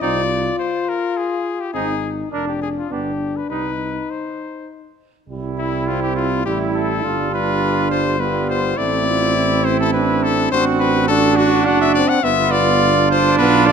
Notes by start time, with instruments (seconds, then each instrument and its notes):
0.01 tuba C2, trombone C4, flugelhorn D#4, french horn F4, cornet D5
0.59 cornet C5
0.89 cornet A#4
1.17 cornet G#4
1.61 cornet G4
1.74 tuba G#1, trombone C4, french horn D#4, flugelhorn D#4, cornet G#4
2.32 tuba F1, flugelhorn D4, french horn D4, trombone D4, cornet A#4
2.48 cornet G4
2.62 cornet G#4
2.78 cornet F4
2.90 tuba G1, trombone B3, french horn D4, flugelhorn D4, cornet G4
3.37 cornet B4
3.50 tuba C2, trombone G3, french horn D#4, flugelhorn D#4, cornet B4
4.11 cornet C5
5.29 tuba C2, french horn G3, flugelhorn E4
5.58 cornet E4
5.87 trombone C4, cornet F4
6.03 cornet G4
6.16 cornet F4
6.45 tuba A1, french horn G3, trombone E4, flugelhorn E4, cornet G4
6.75 cornet A4
7.03 tuba G1, french horn G3, trombone D4, flugelhorn F4
7.32 trombone D4, cornet B4
7.91 cornet C5
8.19 french horn G3, trombone B3, flugelhorn F4, cornet B4
8.49 cornet C5
8.77 tuba A1, trombone A3, french horn C4, flugelhorn E4, cornet D5
9.07 trombone F4
9.36 trombone E4
9.65 cornet C5
9.80 cornet A4
9.94 trombone D4, cornet B4
10.24 cornet A4
10.52 tuba A1, trombone C4, french horn D4, flugelhorn F#4, cornet C5
10.80 cornet B4
11.08 french horn D4, trombone D4, flugelhorn F#4, cornet A4
11.37 cornet F#4
11.66 tuba F#1, french horn D4, flugelhorn F#4, cornet F#5
11.81 cornet E5
11.95 french horn C4, cornet D5
12.09 cornet F#5
12.23 tuba G1, french horn B3, trombone B3, flugelhorn F4, cornet E5
12.52 cornet D5
12.81 trombone D4
13.11 cornet C5
13.38 tuba B1, french horn B3, flugelhorn F4, cornet B4
13.67 french horn A3, cornet D5